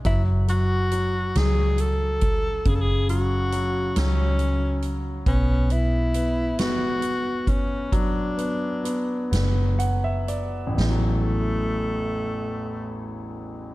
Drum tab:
HH |xxxxxx|xxxxxx|xxxxxx|xxxxxx|
SD |---o--|---o--|---o--|---o--|
BD |o----o|o-----|o----o|o-----|

HH |------|
SD |o-----|
BD |------|